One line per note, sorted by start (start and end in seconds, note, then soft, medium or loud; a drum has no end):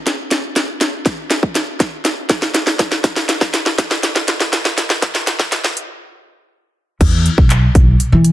0.07 snare medium
0.07 closed hi-hat medium
0.31 snare medium
0.31 closed hi-hat medium
0.56 snare medium
0.56 closed hi-hat medium
0.81 snare medium
0.81 closed hi-hat medium
1.06 kick loud
1.06 snare medium
1.06 closed hi-hat medium
1.31 snare loud
1.31 closed hi-hat medium
1.43 kick medium
1.55 snare medium
1.55 closed hi-hat medium
1.80 kick loud
1.80 snare medium
1.80 closed hi-hat medium
2.05 snare loud
2.05 closed hi-hat medium
2.29 kick medium
2.29 snare loud
2.29 closed hi-hat medium
2.42 snare loud
2.54 snare loud
2.54 closed hi-hat loud
2.67 snare loud
2.79 kick medium
2.79 snare loud
2.79 closed hi-hat medium
2.92 snare loud
3.04 kick loud
3.04 snare loud
3.04 closed hi-hat medium
3.16 snare loud
3.29 snare loud
3.29 closed hi-hat medium
3.41 kick medium
3.41 snare loud
3.54 snare loud
3.54 closed hi-hat medium
3.66 snare loud
3.78 kick loud
3.78 snare loud
3.78 closed hi-hat medium
3.91 snare loud
4.03 snare loud
4.03 closed hi-hat loud
4.16 snare loud
4.28 snare loud
4.28 closed hi-hat medium
4.40 snare loud
4.53 snare loud
4.53 closed hi-hat loud
4.65 snare loud
4.78 snare loud
4.78 closed hi-hat medium
4.90 snare loud
5.02 kick loud
5.02 snare loud
5.02 closed hi-hat medium
5.15 snare loud
5.27 snare loud
5.27 closed hi-hat medium
5.40 kick medium
5.40 snare loud
5.52 snare loud
5.52 closed hi-hat medium
5.64 snare loud
5.77 closed hi-hat medium
7.01 7.27 E2 loud
7.01 kick loud
7.01 closed hi-hat medium
7.01 crash loud
7.26 closed hi-hat medium
7.38 7.64 B1 medium
7.38 kick medium
7.50 clap loud
7.50 closed hi-hat medium
7.75 7.92 B1 medium
7.75 kick loud
7.75 closed hi-hat medium
8.00 closed hi-hat loud
8.12 8.30 E3 loud
8.25 closed hi-hat medium